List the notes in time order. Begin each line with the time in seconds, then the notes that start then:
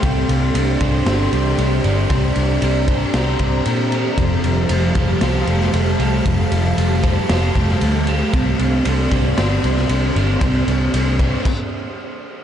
Already playing: G3 G4 C5 C6
0.03 C2 C4 G4 C5 D5, kick, ride
0.29 C2 D4, ride
0.55 C2 C4 D4, ride
0.81 C2 D4 C5, kick, ride
1.06 G1 G4 C5, snare, ride
1.33 C2 C4 G4, ride
1.58 C2 C4 D4, ride
1.84 G1 D4 G4, ride
2.10 C2 C4 A#5, kick, ride
2.36 C2 D4, ride
2.62 C2 C4 D4, ride
2.88 D4 C5, kick, ride
3.14 C2 G4 C5, snare, ride
3.39 C2 C4 G4, kick, ride
3.66 A#2 C4 D4, ride
3.92 D4 G4, ride
4.17 F1 F3 F5 A5, kick, ride
4.44 F1 G3, ride
4.69 F1 G3 A3, ride
4.95 F1 G3 C5, kick, ride
5.21 C2 G4 C5, snare, ride
5.47 F1 A3 G4, ride
5.61 snare
5.74 F1 G3 A3, ride
5.99 C2 G3 G4, ride
6.25 F1 F3, kick, ride
6.52 F1 G3, ride
6.77 F1 G3 A3, ride
7.03 G3 C5, kick, ride
7.29 F1 G4 C5, snare, ride
7.55 F1 A3 G4, kick, ride
7.69 snare
7.81 D2 G3 A3, ride
8.07 G3 G4, ride
8.32 C2 C4 D5 C6, kick, ride
8.59 C2 D4, ride
8.85 C2 C4 D4, ride
9.11 C2 D4 C5, kick, ride
9.37 G1 G4 C5, snare, ride
9.63 C2 C4 G4, ride
9.77 snare
9.89 C2 C4 D4, ride
10.15 G1 D4 G4, ride
10.41 C2 C4, kick, ride
10.67 C2 D4, ride
10.93 C2 C4 D4, ride
11.19 D4 C5, kick, ride
11.45 kick, crash